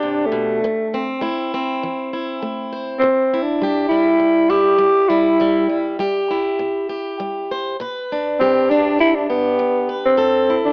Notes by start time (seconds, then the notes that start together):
Already playing: D4 G4 B4
0.03 C3
0.26 A3
0.32 B2
0.64 A2, muted steel-string acoustic guitar stroke
0.94 C4
1.21 A3 E4
1.54 C4
1.83 E3
2.13 E4
2.43 A3
2.73 C5
2.99 C3 C4
3.04 muted steel-string acoustic guitar stroke
3.34 E4
3.43 D4
3.62 G3 G4
3.89 G3 E4
4.20 C3
4.50 E4 G4
4.79 G3
5.09 G3 E4
5.40 C3 G3
5.70 G3
5.99 G3 G4
6.31 E4
6.59 C3
6.89 G4
7.20 G3
7.51 C5
7.80 B2 B4
8.12 D4
8.40 G3 C4 G4
8.70 D4
8.99 B2 E4
9.15 D4
9.30 B3 G4
9.59 G3
9.89 B4
10.05 C4
10.17 A2 A4
10.50 E4
10.65 D4